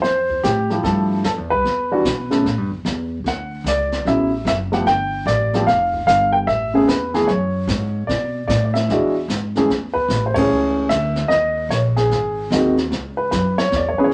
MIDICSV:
0, 0, Header, 1, 5, 480
1, 0, Start_track
1, 0, Key_signature, 3, "major"
1, 0, Tempo, 402414
1, 39, Time_signature, 4, 2, 24, 8
1, 16861, End_track
2, 0, Start_track
2, 0, Title_t, "Grand piano"
2, 0, Program_c, 0, 0
2, 21, Note_on_c, 0, 72, 93
2, 477, Note_off_c, 0, 72, 0
2, 518, Note_on_c, 0, 67, 93
2, 827, Note_off_c, 0, 67, 0
2, 836, Note_on_c, 0, 53, 60
2, 843, Note_on_c, 0, 57, 53
2, 845, Note_on_c, 0, 67, 68
2, 849, Note_on_c, 0, 64, 59
2, 998, Note_on_c, 0, 69, 83
2, 1447, Note_off_c, 0, 69, 0
2, 1451, Note_off_c, 0, 53, 0
2, 1454, Note_off_c, 0, 57, 0
2, 1455, Note_off_c, 0, 67, 0
2, 1457, Note_off_c, 0, 64, 0
2, 1493, Note_on_c, 0, 69, 83
2, 1561, Note_off_c, 0, 69, 0
2, 1793, Note_on_c, 0, 71, 98
2, 2285, Note_on_c, 0, 52, 68
2, 2285, Note_on_c, 0, 55, 60
2, 2288, Note_on_c, 0, 62, 67
2, 2295, Note_on_c, 0, 66, 79
2, 2432, Note_off_c, 0, 52, 0
2, 2432, Note_off_c, 0, 55, 0
2, 2434, Note_off_c, 0, 62, 0
2, 2437, Note_off_c, 0, 66, 0
2, 2747, Note_on_c, 0, 49, 72
2, 2749, Note_on_c, 0, 57, 62
2, 2759, Note_on_c, 0, 59, 67
2, 2763, Note_on_c, 0, 69, 74
2, 2904, Note_off_c, 0, 49, 0
2, 2905, Note_off_c, 0, 57, 0
2, 2910, Note_off_c, 0, 59, 0
2, 2912, Note_off_c, 0, 69, 0
2, 3186, Note_off_c, 0, 71, 0
2, 3908, Note_on_c, 0, 78, 89
2, 4389, Note_on_c, 0, 74, 89
2, 4390, Note_off_c, 0, 78, 0
2, 4824, Note_off_c, 0, 74, 0
2, 4852, Note_on_c, 0, 49, 55
2, 4854, Note_on_c, 0, 54, 52
2, 4858, Note_on_c, 0, 59, 55
2, 4860, Note_on_c, 0, 76, 84
2, 4863, Note_on_c, 0, 64, 65
2, 5126, Note_off_c, 0, 49, 0
2, 5128, Note_off_c, 0, 54, 0
2, 5130, Note_off_c, 0, 59, 0
2, 5132, Note_off_c, 0, 64, 0
2, 5320, Note_off_c, 0, 76, 0
2, 5338, Note_on_c, 0, 76, 94
2, 5406, Note_off_c, 0, 76, 0
2, 5628, Note_on_c, 0, 53, 63
2, 5629, Note_on_c, 0, 57, 61
2, 5640, Note_on_c, 0, 59, 58
2, 5642, Note_on_c, 0, 67, 67
2, 5649, Note_on_c, 0, 78, 86
2, 5785, Note_off_c, 0, 53, 0
2, 5785, Note_off_c, 0, 57, 0
2, 5791, Note_off_c, 0, 59, 0
2, 5792, Note_off_c, 0, 67, 0
2, 5801, Note_off_c, 0, 78, 0
2, 5808, Note_on_c, 0, 79, 101
2, 6253, Note_off_c, 0, 79, 0
2, 6282, Note_on_c, 0, 74, 94
2, 6610, Note_on_c, 0, 53, 68
2, 6614, Note_on_c, 0, 57, 60
2, 6618, Note_on_c, 0, 59, 62
2, 6620, Note_on_c, 0, 67, 69
2, 6730, Note_off_c, 0, 74, 0
2, 6756, Note_off_c, 0, 53, 0
2, 6758, Note_off_c, 0, 57, 0
2, 6760, Note_off_c, 0, 59, 0
2, 6760, Note_on_c, 0, 77, 88
2, 6761, Note_off_c, 0, 67, 0
2, 7221, Note_off_c, 0, 77, 0
2, 7239, Note_on_c, 0, 77, 98
2, 7529, Note_off_c, 0, 77, 0
2, 7544, Note_on_c, 0, 79, 93
2, 7604, Note_off_c, 0, 79, 0
2, 7720, Note_on_c, 0, 76, 102
2, 8036, Note_on_c, 0, 49, 74
2, 8043, Note_on_c, 0, 57, 64
2, 8052, Note_on_c, 0, 59, 66
2, 8052, Note_on_c, 0, 68, 78
2, 8189, Note_off_c, 0, 49, 0
2, 8192, Note_off_c, 0, 57, 0
2, 8197, Note_off_c, 0, 59, 0
2, 8197, Note_off_c, 0, 68, 0
2, 8206, Note_on_c, 0, 71, 84
2, 8217, Note_off_c, 0, 76, 0
2, 8517, Note_on_c, 0, 52, 74
2, 8524, Note_on_c, 0, 57, 58
2, 8526, Note_on_c, 0, 59, 58
2, 8528, Note_on_c, 0, 68, 81
2, 8669, Note_off_c, 0, 52, 0
2, 8673, Note_off_c, 0, 57, 0
2, 8673, Note_off_c, 0, 59, 0
2, 8675, Note_off_c, 0, 68, 0
2, 8678, Note_on_c, 0, 73, 82
2, 8699, Note_off_c, 0, 71, 0
2, 9594, Note_off_c, 0, 73, 0
2, 9628, Note_on_c, 0, 74, 81
2, 10082, Note_off_c, 0, 74, 0
2, 10109, Note_on_c, 0, 74, 82
2, 10297, Note_off_c, 0, 74, 0
2, 10315, Note_on_c, 0, 74, 59
2, 10422, Note_on_c, 0, 76, 84
2, 10428, Note_off_c, 0, 74, 0
2, 10624, Note_on_c, 0, 52, 67
2, 10631, Note_on_c, 0, 56, 64
2, 10632, Note_on_c, 0, 62, 60
2, 10634, Note_on_c, 0, 66, 72
2, 10892, Note_off_c, 0, 52, 0
2, 10896, Note_off_c, 0, 56, 0
2, 10896, Note_off_c, 0, 62, 0
2, 10897, Note_off_c, 0, 66, 0
2, 11033, Note_off_c, 0, 76, 0
2, 11414, Note_on_c, 0, 52, 69
2, 11414, Note_on_c, 0, 57, 62
2, 11418, Note_on_c, 0, 61, 59
2, 11425, Note_on_c, 0, 68, 79
2, 11558, Note_off_c, 0, 52, 0
2, 11558, Note_off_c, 0, 57, 0
2, 11560, Note_off_c, 0, 61, 0
2, 11563, Note_off_c, 0, 68, 0
2, 11850, Note_on_c, 0, 71, 87
2, 12208, Note_off_c, 0, 71, 0
2, 12240, Note_on_c, 0, 72, 67
2, 12338, Note_on_c, 0, 73, 89
2, 12350, Note_off_c, 0, 72, 0
2, 12366, Note_on_c, 0, 52, 66
2, 12371, Note_on_c, 0, 57, 58
2, 12376, Note_on_c, 0, 61, 64
2, 12385, Note_on_c, 0, 68, 74
2, 12951, Note_off_c, 0, 73, 0
2, 12977, Note_off_c, 0, 52, 0
2, 12979, Note_off_c, 0, 57, 0
2, 12982, Note_off_c, 0, 61, 0
2, 12986, Note_off_c, 0, 68, 0
2, 12993, Note_on_c, 0, 76, 98
2, 13445, Note_off_c, 0, 76, 0
2, 13458, Note_on_c, 0, 75, 94
2, 13917, Note_off_c, 0, 75, 0
2, 13961, Note_on_c, 0, 73, 85
2, 14031, Note_off_c, 0, 73, 0
2, 14271, Note_on_c, 0, 68, 78
2, 14878, Note_off_c, 0, 68, 0
2, 14933, Note_on_c, 0, 56, 62
2, 14934, Note_on_c, 0, 51, 61
2, 14946, Note_on_c, 0, 60, 62
2, 14951, Note_on_c, 0, 66, 75
2, 15207, Note_off_c, 0, 51, 0
2, 15207, Note_off_c, 0, 56, 0
2, 15214, Note_off_c, 0, 60, 0
2, 15216, Note_off_c, 0, 66, 0
2, 15712, Note_on_c, 0, 71, 78
2, 15861, Note_off_c, 0, 71, 0
2, 15879, Note_on_c, 0, 71, 79
2, 16169, Note_off_c, 0, 71, 0
2, 16201, Note_on_c, 0, 73, 89
2, 16412, Note_off_c, 0, 73, 0
2, 16418, Note_on_c, 0, 74, 75
2, 16561, Note_off_c, 0, 74, 0
2, 16564, Note_on_c, 0, 73, 74
2, 16677, Note_on_c, 0, 52, 65
2, 16680, Note_on_c, 0, 71, 74
2, 16686, Note_on_c, 0, 59, 61
2, 16690, Note_off_c, 0, 73, 0
2, 16692, Note_on_c, 0, 68, 74
2, 16694, Note_on_c, 0, 61, 60
2, 16750, Note_on_c, 0, 73, 75
2, 16762, Note_off_c, 0, 71, 0
2, 16829, Note_off_c, 0, 52, 0
2, 16834, Note_off_c, 0, 59, 0
2, 16836, Note_off_c, 0, 73, 0
2, 16837, Note_off_c, 0, 61, 0
2, 16837, Note_off_c, 0, 68, 0
2, 16861, End_track
3, 0, Start_track
3, 0, Title_t, "Upright bass"
3, 0, Program_c, 1, 32
3, 36, Note_on_c, 1, 41, 67
3, 504, Note_off_c, 1, 41, 0
3, 517, Note_on_c, 1, 45, 87
3, 985, Note_off_c, 1, 45, 0
3, 992, Note_on_c, 1, 43, 77
3, 1463, Note_off_c, 1, 43, 0
3, 1482, Note_on_c, 1, 41, 86
3, 1642, Note_off_c, 1, 41, 0
3, 1642, Note_on_c, 1, 40, 51
3, 1793, Note_off_c, 1, 40, 0
3, 1801, Note_on_c, 1, 36, 62
3, 1950, Note_off_c, 1, 36, 0
3, 1960, Note_on_c, 1, 40, 74
3, 2427, Note_off_c, 1, 40, 0
3, 2440, Note_on_c, 1, 47, 77
3, 2904, Note_off_c, 1, 47, 0
3, 2912, Note_on_c, 1, 45, 75
3, 3074, Note_off_c, 1, 45, 0
3, 3074, Note_on_c, 1, 43, 61
3, 3225, Note_off_c, 1, 43, 0
3, 3232, Note_on_c, 1, 40, 61
3, 3387, Note_off_c, 1, 40, 0
3, 3397, Note_on_c, 1, 40, 89
3, 3859, Note_off_c, 1, 40, 0
3, 3867, Note_on_c, 1, 38, 72
3, 4338, Note_off_c, 1, 38, 0
3, 4345, Note_on_c, 1, 37, 86
3, 4820, Note_off_c, 1, 37, 0
3, 4834, Note_on_c, 1, 33, 73
3, 5300, Note_off_c, 1, 33, 0
3, 5307, Note_on_c, 1, 30, 84
3, 5781, Note_off_c, 1, 30, 0
3, 5795, Note_on_c, 1, 31, 74
3, 6262, Note_off_c, 1, 31, 0
3, 6269, Note_on_c, 1, 33, 89
3, 6743, Note_off_c, 1, 33, 0
3, 6757, Note_on_c, 1, 29, 84
3, 7227, Note_off_c, 1, 29, 0
3, 7237, Note_on_c, 1, 31, 95
3, 7706, Note_off_c, 1, 31, 0
3, 7723, Note_on_c, 1, 33, 76
3, 8189, Note_off_c, 1, 33, 0
3, 8202, Note_on_c, 1, 40, 86
3, 8669, Note_off_c, 1, 40, 0
3, 8680, Note_on_c, 1, 42, 75
3, 9148, Note_off_c, 1, 42, 0
3, 9154, Note_on_c, 1, 44, 95
3, 9625, Note_off_c, 1, 44, 0
3, 9640, Note_on_c, 1, 47, 65
3, 10108, Note_off_c, 1, 47, 0
3, 10114, Note_on_c, 1, 45, 91
3, 10585, Note_off_c, 1, 45, 0
3, 10602, Note_on_c, 1, 40, 81
3, 11065, Note_off_c, 1, 40, 0
3, 11072, Note_on_c, 1, 44, 88
3, 11544, Note_off_c, 1, 44, 0
3, 11556, Note_on_c, 1, 40, 69
3, 12021, Note_off_c, 1, 40, 0
3, 12029, Note_on_c, 1, 33, 85
3, 12502, Note_off_c, 1, 33, 0
3, 12512, Note_on_c, 1, 37, 75
3, 12984, Note_off_c, 1, 37, 0
3, 12992, Note_on_c, 1, 38, 97
3, 13461, Note_off_c, 1, 38, 0
3, 13468, Note_on_c, 1, 39, 68
3, 13935, Note_off_c, 1, 39, 0
3, 13943, Note_on_c, 1, 34, 77
3, 14419, Note_off_c, 1, 34, 0
3, 14431, Note_on_c, 1, 32, 74
3, 14903, Note_off_c, 1, 32, 0
3, 14916, Note_on_c, 1, 39, 88
3, 15386, Note_off_c, 1, 39, 0
3, 15396, Note_on_c, 1, 37, 80
3, 15866, Note_off_c, 1, 37, 0
3, 15885, Note_on_c, 1, 42, 87
3, 16350, Note_off_c, 1, 42, 0
3, 16365, Note_on_c, 1, 40, 81
3, 16652, Note_off_c, 1, 40, 0
3, 16861, End_track
4, 0, Start_track
4, 0, Title_t, "Muted upright bass strokes"
4, 16670, Note_on_c, 9, 29, 34
4, 16789, Note_off_c, 9, 29, 0
4, 16861, End_track
5, 0, Start_track
5, 0, Title_t, "Drums"
5, 43, Note_on_c, 9, 25, 45
5, 43, Note_on_c, 9, 38, 41
5, 162, Note_off_c, 9, 38, 0
5, 352, Note_on_c, 9, 36, 47
5, 472, Note_off_c, 9, 36, 0
5, 523, Note_on_c, 9, 38, 57
5, 524, Note_on_c, 9, 44, 48
5, 642, Note_off_c, 9, 38, 0
5, 644, Note_off_c, 9, 44, 0
5, 835, Note_on_c, 9, 38, 38
5, 954, Note_off_c, 9, 38, 0
5, 1005, Note_off_c, 9, 25, 0
5, 1005, Note_on_c, 9, 25, 45
5, 1005, Note_on_c, 9, 38, 41
5, 1124, Note_off_c, 9, 38, 0
5, 1481, Note_on_c, 9, 38, 63
5, 1482, Note_on_c, 9, 44, 49
5, 1600, Note_off_c, 9, 38, 0
5, 1601, Note_off_c, 9, 44, 0
5, 1968, Note_off_c, 9, 25, 0
5, 1968, Note_on_c, 9, 25, 43
5, 1968, Note_on_c, 9, 38, 38
5, 2088, Note_off_c, 9, 38, 0
5, 2445, Note_on_c, 9, 38, 58
5, 2446, Note_on_c, 9, 44, 49
5, 2564, Note_off_c, 9, 38, 0
5, 2566, Note_off_c, 9, 44, 0
5, 2755, Note_on_c, 9, 38, 42
5, 2874, Note_off_c, 9, 38, 0
5, 2932, Note_off_c, 9, 25, 0
5, 2932, Note_on_c, 9, 25, 46
5, 2932, Note_on_c, 9, 38, 47
5, 3051, Note_off_c, 9, 38, 0
5, 3404, Note_on_c, 9, 38, 63
5, 3405, Note_on_c, 9, 44, 53
5, 3524, Note_off_c, 9, 38, 0
5, 3525, Note_off_c, 9, 44, 0
5, 3887, Note_off_c, 9, 25, 0
5, 3887, Note_on_c, 9, 25, 47
5, 3887, Note_on_c, 9, 38, 43
5, 4006, Note_off_c, 9, 38, 0
5, 4367, Note_on_c, 9, 38, 58
5, 4368, Note_on_c, 9, 44, 62
5, 4486, Note_off_c, 9, 38, 0
5, 4487, Note_off_c, 9, 44, 0
5, 4677, Note_on_c, 9, 38, 39
5, 4796, Note_off_c, 9, 38, 0
5, 4846, Note_off_c, 9, 25, 0
5, 4846, Note_on_c, 9, 25, 45
5, 4846, Note_on_c, 9, 38, 43
5, 4966, Note_off_c, 9, 38, 0
5, 5324, Note_on_c, 9, 38, 62
5, 5325, Note_on_c, 9, 44, 52
5, 5443, Note_off_c, 9, 38, 0
5, 5444, Note_off_c, 9, 44, 0
5, 5637, Note_on_c, 9, 38, 38
5, 5756, Note_off_c, 9, 38, 0
5, 5803, Note_off_c, 9, 25, 0
5, 5803, Note_on_c, 9, 25, 44
5, 5803, Note_on_c, 9, 38, 40
5, 5922, Note_off_c, 9, 38, 0
5, 6291, Note_on_c, 9, 38, 60
5, 6292, Note_on_c, 9, 44, 51
5, 6410, Note_off_c, 9, 38, 0
5, 6411, Note_off_c, 9, 44, 0
5, 6602, Note_on_c, 9, 38, 39
5, 6721, Note_off_c, 9, 38, 0
5, 6773, Note_off_c, 9, 25, 0
5, 6773, Note_on_c, 9, 25, 47
5, 6773, Note_on_c, 9, 38, 45
5, 6892, Note_off_c, 9, 38, 0
5, 7078, Note_on_c, 9, 36, 45
5, 7197, Note_off_c, 9, 36, 0
5, 7249, Note_on_c, 9, 38, 56
5, 7250, Note_on_c, 9, 44, 54
5, 7368, Note_off_c, 9, 38, 0
5, 7369, Note_off_c, 9, 44, 0
5, 7731, Note_off_c, 9, 25, 0
5, 7731, Note_on_c, 9, 25, 51
5, 7731, Note_on_c, 9, 38, 38
5, 7851, Note_off_c, 9, 38, 0
5, 8210, Note_on_c, 9, 38, 58
5, 8211, Note_on_c, 9, 44, 52
5, 8329, Note_off_c, 9, 38, 0
5, 8330, Note_off_c, 9, 44, 0
5, 8519, Note_on_c, 9, 38, 42
5, 8638, Note_off_c, 9, 38, 0
5, 8687, Note_off_c, 9, 25, 0
5, 8687, Note_on_c, 9, 25, 49
5, 8687, Note_on_c, 9, 38, 44
5, 8807, Note_off_c, 9, 38, 0
5, 9164, Note_on_c, 9, 38, 60
5, 9165, Note_on_c, 9, 44, 56
5, 9283, Note_off_c, 9, 38, 0
5, 9284, Note_off_c, 9, 44, 0
5, 9651, Note_off_c, 9, 25, 0
5, 9651, Note_on_c, 9, 25, 52
5, 9651, Note_on_c, 9, 38, 43
5, 9770, Note_off_c, 9, 38, 0
5, 10131, Note_on_c, 9, 38, 56
5, 10132, Note_on_c, 9, 44, 59
5, 10250, Note_off_c, 9, 38, 0
5, 10251, Note_off_c, 9, 44, 0
5, 10435, Note_on_c, 9, 38, 40
5, 10555, Note_off_c, 9, 38, 0
5, 10612, Note_off_c, 9, 25, 0
5, 10612, Note_on_c, 9, 25, 46
5, 10612, Note_on_c, 9, 38, 45
5, 10731, Note_off_c, 9, 38, 0
5, 11086, Note_on_c, 9, 38, 65
5, 11087, Note_on_c, 9, 44, 53
5, 11205, Note_off_c, 9, 38, 0
5, 11207, Note_off_c, 9, 44, 0
5, 11395, Note_on_c, 9, 38, 35
5, 11514, Note_off_c, 9, 38, 0
5, 11569, Note_off_c, 9, 25, 0
5, 11569, Note_on_c, 9, 25, 49
5, 11569, Note_on_c, 9, 38, 41
5, 11689, Note_off_c, 9, 38, 0
5, 11874, Note_on_c, 9, 36, 42
5, 11993, Note_off_c, 9, 36, 0
5, 12042, Note_on_c, 9, 38, 52
5, 12043, Note_on_c, 9, 44, 56
5, 12161, Note_off_c, 9, 38, 0
5, 12163, Note_off_c, 9, 44, 0
5, 12352, Note_on_c, 9, 36, 85
5, 12352, Note_on_c, 9, 51, 71
5, 12471, Note_off_c, 9, 51, 0
5, 12472, Note_off_c, 9, 36, 0
5, 12522, Note_off_c, 9, 25, 0
5, 12522, Note_on_c, 9, 25, 45
5, 13001, Note_on_c, 9, 38, 61
5, 13003, Note_on_c, 9, 44, 54
5, 13121, Note_off_c, 9, 38, 0
5, 13122, Note_off_c, 9, 44, 0
5, 13306, Note_on_c, 9, 38, 37
5, 13426, Note_off_c, 9, 38, 0
5, 13478, Note_off_c, 9, 25, 0
5, 13478, Note_on_c, 9, 25, 44
5, 13478, Note_on_c, 9, 38, 40
5, 13598, Note_off_c, 9, 38, 0
5, 13963, Note_on_c, 9, 38, 53
5, 13964, Note_on_c, 9, 44, 54
5, 14082, Note_off_c, 9, 38, 0
5, 14083, Note_off_c, 9, 44, 0
5, 14274, Note_on_c, 9, 38, 41
5, 14394, Note_off_c, 9, 38, 0
5, 14447, Note_off_c, 9, 25, 0
5, 14447, Note_on_c, 9, 25, 47
5, 14447, Note_on_c, 9, 38, 47
5, 14566, Note_off_c, 9, 38, 0
5, 14927, Note_on_c, 9, 38, 59
5, 14929, Note_on_c, 9, 44, 54
5, 15047, Note_off_c, 9, 38, 0
5, 15048, Note_off_c, 9, 44, 0
5, 15234, Note_on_c, 9, 38, 36
5, 15353, Note_off_c, 9, 38, 0
5, 15405, Note_off_c, 9, 25, 0
5, 15405, Note_on_c, 9, 25, 40
5, 15405, Note_on_c, 9, 38, 41
5, 15525, Note_off_c, 9, 38, 0
5, 15883, Note_on_c, 9, 38, 53
5, 15884, Note_on_c, 9, 44, 50
5, 16003, Note_off_c, 9, 38, 0
5, 16004, Note_off_c, 9, 44, 0
5, 16197, Note_on_c, 9, 38, 42
5, 16317, Note_off_c, 9, 38, 0
5, 16363, Note_off_c, 9, 25, 0
5, 16363, Note_on_c, 9, 25, 51
5, 16363, Note_on_c, 9, 38, 44
5, 16482, Note_off_c, 9, 38, 0
5, 16861, Note_off_c, 9, 25, 0
5, 16861, End_track
0, 0, End_of_file